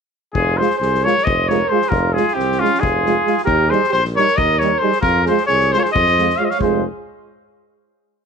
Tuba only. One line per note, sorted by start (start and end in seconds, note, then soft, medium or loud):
0.34 0.60 F1 medium
0.81 1.06 C2 medium
1.26 1.62 F1 medium
1.91 2.16 F1 loud
2.37 2.62 C2 medium
2.81 3.17 F1 medium
3.46 3.72 D#2 loud
3.92 4.18 A#1 medium
4.37 4.73 D#2 medium
5.03 5.28 F2 medium
5.48 5.74 C2 medium
5.95 6.31 F2 medium
6.61 6.84 F1 medium